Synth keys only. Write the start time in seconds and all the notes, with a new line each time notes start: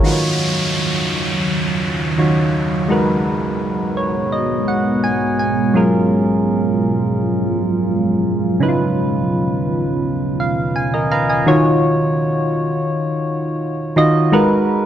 Already playing: A#4
0.03 D#3 D#4 F4 F#4 B4
0.12 C#5
2.18 D#3 D#4 F4 F#4 C#5
2.88 G#3 D#4 F#4 A#4 B4
3.97 C#5
4.32 D#5
4.68 F#5
5.04 G#5
5.39 G#5
5.74 F#3 C#4 F4 G#4 A#4
8.60 C#3 C#4 D#4 E4 B4
8.68 F4
10.40 F5
10.76 G#5
10.94 A#4 D#5
11.12 B4 F5 A#5
11.29 D#5 G#5
11.46 D#3 D#4 F4 F#4 C#5
13.96 D#3 D#4 F4 F#4 D#5
14.32 G#3 D#4 F#4 A#4 B4